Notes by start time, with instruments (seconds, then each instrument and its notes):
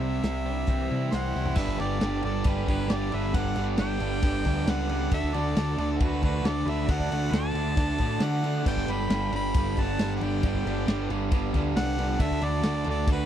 Already playing: picked electric bass C2, overdriven electric guitar C3 G3 C4 E4, distorted electric guitar C3 C4 E4, harmonica E5
0.01 distorted electric guitar G3
0.13 snare
0.23 picked electric bass C2, overdriven electric guitar C3, distorted electric guitar E4, snare, closed hi-hat
0.45 overdriven electric guitar G3, distorted electric guitar C4, electric slide guitar D4
0.67 picked electric bass C2, distorted electric guitar E3, electric slide guitar C4, overdriven electric guitar C4, kick, closed hi-hat
0.90 picked electric bass C3, distorted electric guitar G3, overdriven electric guitar E4
1.11 picked electric bass C2, overdriven electric guitar C4, electric slide guitar E4, distorted electric guitar E4, lead electric guitar C5, harmonica F#5, snare, closed hi-hat
1.35 picked electric bass C2, distorted electric guitar C4, overdriven electric guitar E4, snare
1.45 floor tom
1.55 picked electric bass G1, overdriven electric guitar G2 D3 G3, distorted electric guitar G3 B3 D4 B4, lead electric guitar B4, harmonica E5, kick, crash
1.68 kick
1.77 picked electric bass G1, overdriven electric guitar G2 D3, distorted electric guitar G3 B3 D4 B4, lead electric guitar G4, harmonica D5, snare, ride
1.81 overdriven electric guitar G3
1.99 picked electric bass G1, overdriven electric guitar G2 D3 G3, distorted electric guitar G3 B3 D4 B4, snare, ride
2.21 picked electric bass G1, overdriven electric guitar G2 D3 G3, distorted electric guitar G3 B3 D4 B4, harmonica D5, ride
2.27 lead electric guitar A4
2.44 picked electric bass G1, overdriven electric guitar G2 D3 G3, distorted electric guitar G3 B3 D4 B4, harmonica B4, kick, ride
2.49 lead electric guitar G4
2.57 snare
2.65 picked electric bass G1, overdriven electric guitar G2 D3, distorted electric guitar G3 B3 D4 B4, lead electric guitar G4, harmonica B4, kick, ride
2.69 overdriven electric guitar G3
2.87 picked electric bass G1, overdriven electric guitar G2 D3, distorted electric guitar G3 B3 D4 B4, snare, ride
2.92 overdriven electric guitar G3, lead electric guitar G4, harmonica D5
3.09 overdriven electric guitar G2 D3 G3, distorted electric guitar G3 B3 D4 B4, ride
3.13 picked electric bass G1, lead electric guitar B4, harmonica E5
3.33 picked electric bass G1, overdriven electric guitar G2 D3 G3, distorted electric guitar G3 B3 D4 B4, harmonica F#5, kick, ride
3.38 lead electric guitar D5
3.45 kick
3.55 picked electric bass G1, overdriven electric guitar G2 D3 G3, distorted electric guitar G3 B3 D4 B4, ride
3.77 picked electric bass G1, overdriven electric guitar G2 D3 G3, distorted electric guitar G3 B3 D4 B4, lead electric guitar D5, harmonica G5, snare, ride
4.00 picked electric bass G1, overdriven electric guitar G2 D3 G3, distorted electric guitar G3 B3 D4 B4, ride
4.21 picked electric bass G1, overdriven electric guitar G2 D3 G3, distorted electric guitar G3 B3 D4 B4, kick, ride
4.44 picked electric bass D2, overdriven electric guitar G2 D3 G3, distorted electric guitar G3 B3 D4 B4, kick, ride
4.66 picked electric bass C#2, overdriven electric guitar G2 D3 G3, distorted electric guitar G3 B3 D4 B4, harmonica F#5, snare, ride
4.71 lead electric guitar D5
4.89 overdriven electric guitar G2 D3 G3, distorted electric guitar G3 B3 D4 B4, ride
5.11 picked electric bass D2, distorted electric guitar D3 D4 F#4 A4, overdriven electric guitar D3 A3 D4, lead electric guitar A4, harmonica E5, kick, ride
5.23 kick
5.33 picked electric bass D2, distorted electric guitar D3 D4 F#4 A4, overdriven electric guitar D3 A3 D4, harmonica D5, snare, ride
5.38 lead electric guitar A4
5.56 picked electric bass D2, overdriven electric guitar D3 A3 D4, distorted electric guitar D3 D4 F#4 A4, snare, ride
5.78 picked electric bass D2, overdriven electric guitar D3 A3 D4, distorted electric guitar D3 D4 F#4 A4, harmonica D5, ride
5.82 lead electric guitar A4
5.92 harmonica A4
5.96 overdriven electric guitar D3, lead electric guitar F#4
6.00 picked electric bass D2, distorted electric guitar D3 D4 F#4 A4, overdriven electric guitar A3 D4, lead electric guitar F#4, harmonica B4, kick, ride
6.12 snare
6.22 picked electric bass D2, overdriven electric guitar D3 A3 D4, distorted electric guitar D3 D4 F#4 A4, lead electric guitar F#4, harmonica B4, kick, ride
6.43 picked electric bass D2, distorted electric guitar D3 D4 F#4 A4, overdriven electric guitar D3 A3 D4, harmonica D5, snare, ride
6.47 lead electric guitar A4
6.65 picked electric bass D2, distorted electric guitar D3 D4 F#4 A4, overdriven electric guitar D3 A3, lead electric guitar B4, ride
6.70 overdriven electric guitar D4, harmonica E5
6.86 picked electric bass D2, distorted electric guitar D3 D4 F#4 A4, lead electric guitar D5, kick, ride
6.90 overdriven electric guitar D3 A3 D4, harmonica F#5
7.00 kick
7.11 picked electric bass D2, distorted electric guitar D3 D4 F#4 A4, overdriven electric guitar D3 A3 D4, snare, ride
7.23 snare
7.31 picked electric bass D2, distorted electric guitar D3 D4 F#4 A4, overdriven electric guitar D3 A3 D4, lead electric guitar D5, harmonica A5, snare, ride
7.53 picked electric bass D2, overdriven electric guitar D3 A3 D4, distorted electric guitar D3 D4 F#4 A4, ride
7.76 picked electric bass D2, distorted electric guitar D3 D4 F#4 A4, overdriven electric guitar D3 A3 D4, kick, ride
7.88 snare
7.98 picked electric bass A2, distorted electric guitar D3 D4 F#4 A4, overdriven electric guitar D3 A3 D4, kick, ride
8.20 distorted electric guitar D3 D4 F#4 A4, picked electric bass D3, overdriven electric guitar D3 A3 D4, harmonica F#5, snare, ride
8.24 lead electric guitar D5
8.42 distorted electric guitar D3 D4 F#4 A4, overdriven electric guitar D3 A3 D4, ride
8.63 picked electric bass G1, overdriven electric guitar G2, distorted electric guitar G3 B3 D4 B4, kick, crash
8.67 overdriven electric guitar D3 G3, lead electric guitar D5, harmonica G5
8.77 kick
8.86 picked electric bass G1, distorted electric guitar G3 B3 D4 B4, snare, ride
8.90 overdriven electric guitar G2 D3 G3, lead electric guitar G5, harmonica B5
9.00 snare
9.09 picked electric bass G1, overdriven electric guitar G2, distorted electric guitar G3 B3 D4 B4, snare, ride
9.13 overdriven electric guitar D3 G3
9.31 picked electric bass G1, overdriven electric guitar G2, distorted electric guitar G3 B3 D4 B4, lead electric guitar G5, ride
9.35 overdriven electric guitar D3 G3, harmonica B5
9.54 picked electric bass G1, overdriven electric guitar G2 D3 G3, distorted electric guitar G3 B3 D4 B4, kick, ride
9.77 picked electric bass G1, overdriven electric guitar G2 D3 G3, distorted electric guitar G3 B3 D4 B4, lead electric guitar F#5, harmonica A5, kick, ride
9.98 picked electric bass G1, overdriven electric guitar G2 D3 G3, distorted electric guitar G3 B3 D4 B4, snare, ride
10.16 lead electric guitar D5, harmonica F#5
10.21 picked electric bass G1, overdriven electric guitar G2 D3 G3, distorted electric guitar G3 B3 D4 B4, harmonica G5, ride
10.26 lead electric guitar D5
10.42 picked electric bass G1, overdriven electric guitar G2 D3 G3, distorted electric guitar G3 B3 D4 B4, kick, ride
10.54 kick
10.66 picked electric bass G1, overdriven electric guitar G2 D3 G3, distorted electric guitar G3 B3 D4 B4, snare, ride
10.78 snare
10.86 picked electric bass G1, overdriven electric guitar G2 D3 G3, distorted electric guitar G3 B3 D4 B4, snare, ride
11.10 picked electric bass G1, overdriven electric guitar G2 D3 G3, distorted electric guitar G3 B3 D4 B4, ride
11.32 picked electric bass G1, overdriven electric guitar G2 D3 G3, distorted electric guitar G3 B3 D4 B4, kick, ride
11.54 picked electric bass D2, overdriven electric guitar G2 D3 G3, distorted electric guitar G3 B3 D4 B4, kick, ride
11.76 picked electric bass C2, overdriven electric guitar G2 D3 G3, distorted electric guitar G3 B3 D4 B4, lead electric guitar D5, harmonica F#5, snare, ride
11.97 overdriven electric guitar G2 D3 G3, distorted electric guitar G3 B3 D4 B4, ride
12.19 picked electric bass D2, distorted electric guitar D3 D4 F#4 A4, overdriven electric guitar D3 A3 D4, lead electric guitar A4, harmonica E5, kick, ride
12.31 kick
12.41 picked electric bass D2, overdriven electric guitar D3 A3 D4, distorted electric guitar D3 D4 F#4 A4, lead electric guitar A4, harmonica D5, ride
12.62 picked electric bass D2, overdriven electric guitar D3 A3 D4, distorted electric guitar D3 D4 F#4 A4, snare, ride
12.84 picked electric bass D2, distorted electric guitar D3 D4 F#4 A4, overdriven electric guitar D3 A3 D4, ride
12.89 lead electric guitar A4, harmonica D5
13.07 picked electric bass D2, overdriven electric guitar D3 A3 D4, distorted electric guitar D3 D4 F#4 A4, kick, ride
13.11 lead electric guitar F#4, harmonica B4